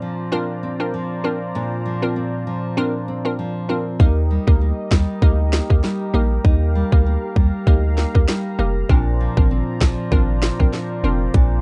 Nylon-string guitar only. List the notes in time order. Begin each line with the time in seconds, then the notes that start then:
Already playing: A#2 C4 D4
0.02 F3
0.33 D4
0.63 C4
0.94 F3
1.24 C4
1.55 A#2 D4
1.86 F3
2.16 C4
2.47 F3
2.78 D4
3.08 C4
3.39 F3
3.69 C4
4.01 D#4
4.31 G3
4.61 A#3
4.92 G3
5.22 D#4
5.53 A#3
5.83 G3
6.14 A#3
6.46 D#4
6.75 G3
7.06 A#3
7.37 G3
7.67 D#4
7.98 A#3
8.29 G3
8.59 A#3
8.90 A#2 D4
9.21 F3
9.51 C4
9.81 F3
10.12 D4
10.43 C4
10.73 F3
11.04 C4
11.35 A#2 D4